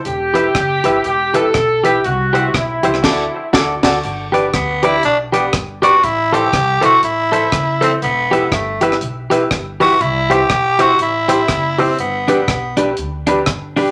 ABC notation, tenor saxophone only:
X:1
M:4/4
L:1/8
Q:"Swing" 1/4=121
K:G
V:1 name="Tenor saxophone"
z8 | z8 | z2 B, E D B, z F | E G2 F E3 C |
B,2 A, z4 F | E G2 F E3 C | B,2 B, z4 z |]